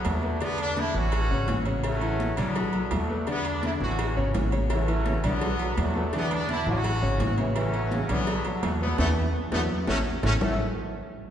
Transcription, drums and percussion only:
0.05 cowbell medium
0.05 high conga medium
0.05 low timbale medium
0.05 low agogo loud
0.23 high conga medium
0.41 cowbell loud
0.41 high conga soft
0.41 low agogo loud
0.58 high conga soft
0.58 low agogo loud
0.76 cowbell medium
0.76 high conga loud
0.76 low timbale medium
0.94 high conga soft
1.12 cowbell loud
1.12 high conga soft
1.12 low agogo loud
1.30 high conga soft
1.48 cowbell medium
1.48 high conga medium
1.48 low timbale medium
1.48 low agogo medium
1.65 high conga medium
1.65 low agogo medium
1.84 cowbell loud
1.84 low agogo loud
2.01 high conga soft
2.01 low agogo medium
2.19 cowbell medium
2.19 high conga loud
2.19 low timbale medium
2.37 cowbell medium
2.37 high conga soft
2.37 low conga loud
2.37 low agogo loud
2.55 cowbell loud
2.55 high conga soft
2.55 low conga medium
2.55 low agogo loud
2.73 high conga soft
2.73 low agogo medium
2.91 cowbell medium
2.91 high conga medium
2.91 low timbale loud
2.91 low agogo loud
3.10 high conga medium
3.27 cowbell loud
3.27 high conga soft
3.27 low agogo medium
3.45 high conga soft
3.45 low agogo loud
3.63 cowbell medium
3.63 high conga loud
3.63 low timbale medium
3.81 high conga soft
3.99 cowbell loud
3.99 high conga soft
3.99 low agogo loud
4.17 high conga soft
4.34 cowbell medium
4.34 high conga loud
4.34 low timbale medium
4.34 low agogo medium
4.52 high conga medium
4.52 low agogo loud
4.70 cowbell loud
4.70 high conga soft
4.70 low agogo loud
4.88 high conga soft
4.88 low agogo medium
5.06 cowbell medium
5.06 high conga loud
5.06 low timbale medium
5.24 cowbell medium
5.24 high conga soft
5.24 low conga medium
5.24 low agogo loud
5.41 cowbell loud
5.41 high conga soft
5.41 low conga medium
5.41 low agogo medium
5.59 high conga soft
5.59 low agogo medium
5.77 cowbell medium
5.77 high conga loud
5.77 low timbale medium
5.77 low agogo loud
5.95 high conga medium
6.13 cowbell loud
6.13 high conga soft
6.13 low agogo medium
6.31 high conga soft
6.31 low agogo loud
6.49 cowbell medium
6.49 high conga loud
6.49 low timbale medium
6.67 high conga soft
6.84 cowbell loud
6.84 high conga soft
6.84 low agogo loud
7.03 high conga soft
7.20 cowbell medium
7.20 high conga loud
7.20 low timbale medium
7.20 low agogo medium
7.38 high conga medium
7.38 low agogo medium
7.56 cowbell loud
7.56 low agogo loud
7.74 high conga soft
7.74 low agogo medium
7.91 cowbell medium
7.91 high conga loud
7.91 low timbale medium
8.09 cowbell medium
8.09 high conga soft
8.09 low conga medium
8.09 low agogo loud
8.27 cowbell loud
8.27 high conga soft
8.27 low conga medium
8.27 low agogo loud
8.45 high conga soft
8.45 low agogo loud
8.63 cowbell medium
8.63 high conga loud
8.63 low timbale medium
8.63 low agogo loud
8.81 high conga medium
8.98 cowbell medium
8.98 high conga loud
8.98 high timbale loud
9.52 cowbell loud
9.52 high conga loud
9.52 high timbale loud
9.87 cowbell loud
9.87 high conga loud
9.87 high timbale loud
10.23 cowbell loud
10.23 high conga loud
10.23 high timbale loud
10.41 low bongo loud
10.41 low conga loud
10.41 low timbale loud

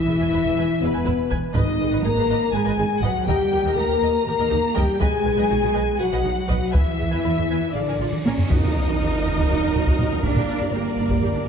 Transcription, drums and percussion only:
1.31 taiko medium
1.55 taiko medium
3.04 taiko medium
3.28 taiko medium
4.77 taiko medium
5.01 taiko loud
6.50 taiko medium
6.74 taiko medium
8.12 taiko mid medium
8.26 taiko high medium
8.38 taiko low medium
8.50 taiko medium
8.50 tam-tam medium
8.64 taiko low-mid soft
9.38 taiko medium
9.75 taiko low-mid medium
9.87 taiko medium
9.99 taiko low-mid medium
10.24 taiko medium
10.36 taiko low-mid medium
11.10 taiko medium

